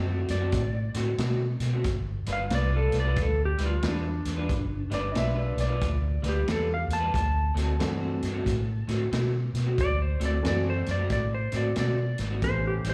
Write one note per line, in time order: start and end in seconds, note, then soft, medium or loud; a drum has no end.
0.00 0.24 F#2 medium
0.00 0.27 D5 medium
0.07 0.33 D3 medium
0.07 0.33 A3 medium
0.07 0.33 C4 medium
0.07 0.32 F#4 medium
0.28 0.50 F#2 medium
0.28 0.94 D5 medium
0.28 snare soft
0.28 closed hi-hat medium
0.40 0.60 D3 medium
0.40 0.60 A3 medium
0.40 0.59 C4 medium
0.40 0.59 F#4 loud
0.52 0.89 A2 medium
0.52 kick loud
0.52 snare soft
0.52 closed hi-hat medium
0.73 muted clean electric guitar stroke soft
0.94 1.16 A2 medium
0.94 1.10 D3 medium
0.94 1.11 A3 medium
0.94 1.11 C4 medium
0.94 1.11 F#4 medium
0.94 snare soft
0.94 closed hi-hat medium
1.18 1.55 B2 medium
1.18 1.40 D3 medium
1.18 1.40 A3 medium
1.18 1.40 C4 medium
1.18 1.39 F#4 medium
1.18 snare loud
1.18 closed hi-hat medium
1.40 muted clean electric guitar stroke medium
1.60 1.82 B2 medium
1.60 snare soft
1.60 closed hi-hat medium
1.73 1.86 D3 medium
1.73 1.86 A3 medium
1.73 1.85 C4 medium
1.73 1.85 F#4 medium
1.84 2.22 G1 medium
1.84 kick loud
1.84 snare soft
1.84 closed hi-hat medium
2.26 2.48 G1 medium
2.26 2.43 G3 medium
2.26 2.43 D4 medium
2.26 2.43 F4 medium
2.26 2.43 B4 medium
2.26 snare soft
2.26 closed hi-hat medium
2.33 2.52 F5 medium
2.50 2.87 C2 medium
2.50 2.72 G3 medium
2.50 2.72 D4 medium
2.50 2.71 F4 medium
2.50 2.71 B4 medium
2.50 snare loud
2.50 closed hi-hat medium
2.55 2.75 D5 medium
2.72 2.97 G3 medium
2.72 2.97 D4 medium
2.72 2.97 F4 medium
2.72 2.97 B4 medium
2.77 2.96 A4 medium
2.92 3.14 C2 medium
2.92 snare soft
2.92 closed hi-hat medium
3.00 3.19 D5 medium
3.05 3.24 G3 medium
3.05 3.24 D4 medium
3.05 3.23 F4 medium
3.05 3.23 B4 loud
3.16 3.54 D2 medium
3.16 kick loud
3.16 snare soft
3.16 closed hi-hat medium
3.22 3.41 A4 medium
3.37 muted clean electric guitar stroke soft
3.45 3.64 G4 medium
3.58 3.80 D2 medium
3.58 3.74 G3 medium
3.58 3.75 D4 medium
3.58 3.75 F4 medium
3.58 3.75 B4 medium
3.58 snare soft
3.58 closed hi-hat medium
3.66 3.85 F4 medium
3.82 4.20 E2 medium
3.82 4.04 G3 medium
3.82 4.03 D4 medium
3.82 4.03 F4 medium
3.82 4.02 B4 medium
3.82 snare loud
3.82 closed hi-hat medium
3.89 5.80 D4 medium
4.03 muted clean electric guitar stroke medium
4.25 4.47 E2 medium
4.25 snare soft
4.25 closed hi-hat medium
4.37 4.56 G3 medium
4.37 4.56 D4 medium
4.37 4.56 F4 medium
4.37 4.55 B4 medium
4.49 4.86 G1 loud
4.49 kick loud
4.49 snare soft
4.49 closed hi-hat medium
4.90 5.12 G1 medium
4.90 5.06 G3 medium
4.90 5.07 D4 medium
4.90 5.07 F4 medium
4.90 5.07 B4 medium
4.90 5.15 D5 medium
4.90 snare soft
4.90 closed hi-hat soft
5.12 5.52 B1 medium
5.12 5.35 G3 medium
5.12 5.34 D4 medium
5.12 5.34 F4 medium
5.12 5.34 B4 medium
5.12 5.17 D#5 medium
5.12 closed hi-hat medium
5.16 5.59 E5 medium
5.16 snare loud
5.35 5.61 G3 medium
5.35 5.61 D4 medium
5.35 5.61 F4 medium
5.35 5.60 B4 medium
5.57 5.78 B1 medium
5.57 6.15 D5 medium
5.57 snare soft
5.57 closed hi-hat medium
5.68 5.88 G3 medium
5.68 5.88 D4 medium
5.68 5.87 F4 loud
5.68 5.87 B4 loud
5.81 6.18 D2 medium
5.81 kick loud
5.81 snare soft
5.81 closed hi-hat medium
6.02 muted clean electric guitar stroke soft
6.22 6.44 D2 medium
6.22 6.39 G3 medium
6.22 6.39 D4 medium
6.22 6.39 F4 medium
6.22 6.39 B4 medium
6.22 snare soft
6.22 closed hi-hat medium
6.29 6.49 G4 medium
6.47 6.84 E2 medium
6.47 6.68 G3 medium
6.47 6.67 D4 medium
6.47 6.67 F4 medium
6.47 6.67 B4 medium
6.47 snare loud
6.47 closed hi-hat medium
6.51 6.71 A4 medium
6.68 muted clean electric guitar stroke medium
6.74 6.93 F5 medium
6.88 7.10 E2 medium
6.88 snare soft
6.88 closed hi-hat medium
6.93 7.14 A5 medium
7.00 7.14 G3 medium
7.00 7.13 D4 medium
7.00 7.13 F4 medium
7.00 7.13 B4 medium
7.14 7.50 D2 medium
7.14 9.09 A5 medium
7.14 kick loud
7.14 snare soft
7.14 closed hi-hat medium
7.54 7.76 D2 medium
7.54 7.71 D3 medium
7.54 7.71 A3 medium
7.54 7.71 C4 medium
7.54 7.72 F#4 medium
7.54 snare soft
7.54 closed hi-hat medium
7.79 8.16 G2 medium
7.79 8.01 D3 medium
7.79 8.17 E3 medium
7.79 8.00 A3 medium
7.79 8.18 A3 medium
7.79 8.00 C4 medium
7.79 8.18 C4 medium
7.79 8.18 D4 medium
7.79 7.99 F#4 medium
7.79 8.18 F#4 medium
7.79 snare loud
7.79 closed hi-hat medium
8.00 8.26 D3 medium
8.00 8.26 A3 medium
8.00 8.26 C4 medium
8.00 8.25 F#4 medium
8.22 8.43 G2 medium
8.22 snare soft
8.22 closed hi-hat medium
8.33 8.53 D3 medium
8.33 8.52 A3 medium
8.33 8.52 C4 medium
8.33 8.52 F#4 loud
8.46 8.83 A2 medium
8.46 kick loud
8.46 snare soft
8.46 closed hi-hat medium
8.66 muted clean electric guitar stroke soft
8.87 9.09 A2 medium
8.87 9.03 D3 medium
8.87 9.04 A3 medium
8.87 9.04 C4 medium
8.87 9.04 F#4 medium
8.87 snare soft
8.87 closed hi-hat medium
9.12 9.49 B2 medium
9.12 9.33 D3 medium
9.12 9.33 A3 medium
9.12 9.32 C4 medium
9.12 9.32 F#4 medium
9.12 snare loud
9.12 closed hi-hat medium
9.33 muted clean electric guitar stroke medium
9.54 9.75 B2 medium
9.54 snare soft
9.54 closed hi-hat medium
9.66 9.85 D3 medium
9.66 9.85 A3 medium
9.66 9.85 C4 medium
9.66 9.85 F#4 medium
9.78 10.15 D2 medium
9.78 10.01 D5 loud
9.78 kick loud
9.78 snare soft
9.78 closed hi-hat medium
10.02 10.23 C5 medium
10.19 10.42 D2 medium
10.19 10.36 D3 medium
10.19 10.36 A3 medium
10.19 10.36 C4 medium
10.19 10.36 F#4 medium
10.19 snare soft
10.19 closed hi-hat medium
10.25 10.45 D5 medium
10.43 10.82 F#2 medium
10.43 10.65 D3 medium
10.43 10.81 E3 medium
10.43 10.81 A3 medium
10.43 10.64 A3 medium
10.43 10.82 C4 medium
10.43 10.64 C4 medium
10.43 10.82 D4 medium
10.43 10.82 F#4 medium
10.43 10.63 F#4 medium
10.43 snare loud
10.43 closed hi-hat medium
10.48 10.67 D5 medium
10.65 10.90 D3 medium
10.65 10.90 A3 medium
10.65 10.90 C4 medium
10.65 10.90 F#4 medium
10.70 10.90 C5 medium
10.86 11.08 F#2 medium
10.86 snare soft
10.86 closed hi-hat medium
10.91 11.11 D5 medium
10.98 11.17 D3 medium
10.98 11.17 A3 medium
10.98 11.17 C4 medium
10.98 11.16 F#4 loud
11.10 11.47 A2 medium
11.10 11.33 D5 medium
11.10 kick loud
11.10 snare soft
11.10 closed hi-hat medium
11.31 11.55 C5 medium
11.31 muted clean electric guitar stroke soft
11.52 11.74 A2 medium
11.52 11.68 D3 medium
11.52 11.68 A3 medium
11.52 11.68 C4 medium
11.52 11.69 F#4 medium
11.52 snare soft
11.52 closed hi-hat medium
11.56 11.77 D5 medium
11.76 12.14 B2 medium
11.76 11.97 D3 medium
11.76 11.97 A3 medium
11.76 11.97 C4 medium
11.76 11.96 F#4 medium
11.76 12.19 D5 medium
11.76 snare loud
11.76 closed hi-hat medium
11.97 muted clean electric guitar stroke medium
12.18 12.40 G#1 medium
12.18 snare soft
12.18 closed hi-hat medium
12.31 12.43 D3 medium
12.31 12.43 A3 medium
12.31 12.43 C4 medium
12.31 12.43 F#4 medium
12.42 12.79 A1 medium
12.42 12.80 E3 medium
12.42 12.80 A3 soft
12.42 12.81 B3 medium
12.42 12.81 C#4 medium
12.42 12.81 G4 medium
12.42 12.65 C5 loud
12.42 kick loud
12.42 snare soft
12.42 closed hi-hat medium
12.67 12.87 G4 medium
12.84 12.94 A1 medium
12.84 12.94 A2 medium
12.84 12.94 G3 medium
12.84 12.94 C#4 medium
12.84 12.94 E4 medium
12.84 snare soft
12.84 closed hi-hat medium
12.89 12.94 C5 medium